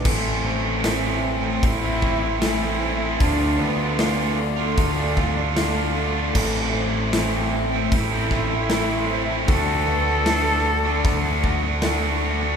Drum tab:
CC |x-------|--------|x-------|--------|
HH |--o-o-o-|o-o-o-o-|--o-o-o-|o-o-o-o-|
SD |--o---o-|--o--oo-|--o--oo-|--o---o-|
BD |o---oo--|o---oo--|o---oo--|o---oo--|